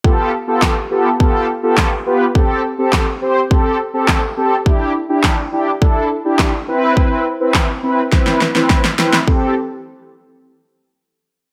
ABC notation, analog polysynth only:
X:1
M:4/4
L:1/16
Q:1/4=104
K:Am
V:1 name="Analog polysynth"
[B,FGA]2 z [B,FGA]2 z [B,FGA] z [B,FGA]2 z [B,FGA]2 z [B,FGB] z | [CGA]2 z [CGA]2 z [CGc] z [CGA]2 z [CGA]2 z [CGA] z | [DEG]2 z [DEG]2 z [DEG] z [DEA]2 z [DEG]2 z [CEB]2- | [CEB]2 z [CEB]2 z [CEB] z [CEB]2 z [CEB]2 z [CEB] z |
[CGA]2 z12 z2 |]